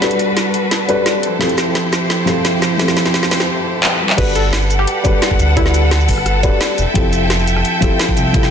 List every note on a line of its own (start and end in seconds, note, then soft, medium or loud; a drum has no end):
0.00 0.88 G3 medium
0.00 1.21 G3 medium
0.00 0.88 D4 medium
0.00 0.02 F#4 medium
0.00 1.21 F#4 medium
0.00 0.87 F#4 medium
0.00 0.03 A4 medium
0.00 3.97 A4 medium
0.00 0.87 A4 medium
0.00 0.03 B4 loud
0.00 1.21 B4 medium
0.00 0.87 B4 medium
0.00 snare medium
0.00 closed hi-hat medium
0.11 closed hi-hat soft
0.19 closed hi-hat medium
0.37 snare medium
0.37 closed hi-hat medium
0.54 closed hi-hat medium
0.71 snare medium
0.71 closed hi-hat medium
0.88 1.22 G3 medium
0.88 1.22 D4 medium
0.88 1.22 F#4 medium
0.88 1.23 A4 medium
0.88 1.23 B4 loud
0.88 closed hi-hat medium
1.06 snare medium
1.06 closed hi-hat medium
1.23 3.98 F3 medium
1.23 3.98 E4 medium
1.23 3.98 G4 medium
1.23 3.98 C5 medium
1.23 closed hi-hat medium
1.39 2.24 F3 medium
1.39 2.25 C4 medium
1.39 2.25 E4 medium
1.39 2.26 G4 medium
1.39 2.26 A4 loud
1.39 snare medium
1.39 closed hi-hat medium
1.49 closed hi-hat soft
1.58 snare medium
1.58 closed hi-hat medium
1.58 cabasa medium
1.75 snare medium
1.75 closed hi-hat medium
1.93 snare medium
1.93 closed hi-hat medium
1.93 cabasa medium
2.10 snare medium
2.10 closed hi-hat medium
2.26 2.76 F3 loud
2.26 2.77 C4 medium
2.26 2.77 E4 medium
2.26 2.78 G4 medium
2.26 2.78 A4 loud
2.26 snare medium
2.26 closed hi-hat medium
2.26 cabasa medium
2.45 snare medium
2.45 closed hi-hat medium
2.62 snare medium
2.62 closed hi-hat medium
2.62 cabasa medium
2.78 3.48 F3 medium
2.78 3.48 C4 medium
2.78 3.49 E4 medium
2.78 3.49 G4 medium
2.78 3.49 A4 loud
2.78 snare medium
2.78 closed hi-hat medium
2.88 snare medium
2.88 closed hi-hat soft
2.97 snare medium
2.97 closed hi-hat medium
2.97 cabasa medium
3.06 snare medium
3.06 closed hi-hat soft
3.14 snare medium
3.14 closed hi-hat medium
3.23 snare medium
3.23 cabasa soft
3.31 snare loud
3.31 open hi-hat medium
3.31 cabasa medium
3.40 snare medium
3.83 clap loud
4.00 4.18 G3 medium
4.00 4.18 F#4 medium
4.00 4.17 A4 medium
4.00 4.17 B4 medium
4.10 clap medium
4.16 4.86 G1 loud
4.16 5.02 G3 medium
4.16 5.02 D4 medium
4.16 5.03 F#4 medium
4.16 8.51 A4 medium
4.16 5.03 A4 medium
4.16 6.76 B4 medium
4.16 4.34 B4 medium
4.16 5.04 B4 loud
4.16 6.76 F#5 medium
4.16 kick loud
4.16 closed hi-hat loud
4.16 crash loud
4.35 4.56 A4 medium
4.35 closed hi-hat medium
4.35 cabasa medium
4.53 snare loud
4.53 closed hi-hat medium
4.62 cabasa soft
4.70 closed hi-hat medium
4.70 cabasa medium
4.79 5.00 G4 medium
4.79 cross-stick soft
4.87 closed hi-hat loud
5.03 5.13 G1 medium
5.03 5.54 G3 loud
5.03 5.54 D4 medium
5.03 5.55 F#4 medium
5.03 5.55 A4 medium
5.03 5.56 B4 loud
5.03 kick loud
5.03 closed hi-hat medium
5.03 cabasa medium
5.22 snare loud
5.22 closed hi-hat loud
5.31 kick medium
5.39 6.08 D2 medium
5.39 closed hi-hat medium
5.39 cabasa medium
5.55 6.41 G3 medium
5.55 6.41 D4 medium
5.55 6.05 E4 medium
5.55 6.42 F#4 medium
5.55 6.42 A4 medium
5.55 6.42 B4 loud
5.55 kick loud
5.55 closed hi-hat loud
5.66 snare soft
5.74 closed hi-hat medium
5.74 cabasa medium
5.91 snare loud
5.91 closed hi-hat medium
6.00 cabasa soft
6.09 6.45 G1 medium
6.09 kick medium
6.09 open hi-hat medium
6.09 cabasa medium
6.18 cross-stick soft
6.26 cross-stick soft
6.26 closed hi-hat loud
6.43 6.52 D1 medium
6.43 6.77 G3 loud
6.43 6.77 D4 medium
6.43 6.77 F#4 medium
6.43 6.77 A4 medium
6.43 6.78 B4 loud
6.43 kick loud
6.43 closed hi-hat medium
6.43 cabasa medium
6.61 snare loud
6.61 closed hi-hat loud
6.78 6.86 F1 loud
6.78 8.51 E5 medium
6.78 8.51 G5 medium
6.78 closed hi-hat medium
6.78 cabasa medium
6.94 7.64 F1 medium
6.94 7.79 F3 medium
6.94 7.80 C4 medium
6.94 7.80 E4 medium
6.94 7.81 G4 medium
6.94 7.81 A4 loud
6.94 kick loud
6.94 closed hi-hat medium
7.13 closed hi-hat medium
7.13 cabasa medium
7.30 snare loud
7.30 closed hi-hat medium
7.39 cabasa soft
7.48 closed hi-hat medium
7.48 cabasa medium
7.56 cross-stick soft
7.65 closed hi-hat medium
7.80 7.90 F1 medium
7.80 8.31 F3 loud
7.80 8.32 C4 medium
7.80 8.32 E4 medium
7.80 8.33 G4 medium
7.80 8.33 A4 loud
7.80 kick loud
7.80 closed hi-hat medium
7.80 cabasa medium
8.00 snare loud
8.00 closed hi-hat medium
8.08 kick medium
8.17 8.51 C2 medium
8.17 closed hi-hat medium
8.17 cabasa medium
8.33 8.51 F3 medium
8.33 8.51 C4 medium
8.33 8.51 E4 medium
8.33 8.51 G4 medium
8.33 8.51 A4 loud
8.33 kick loud
8.33 closed hi-hat medium
8.43 snare soft
8.43 cabasa soft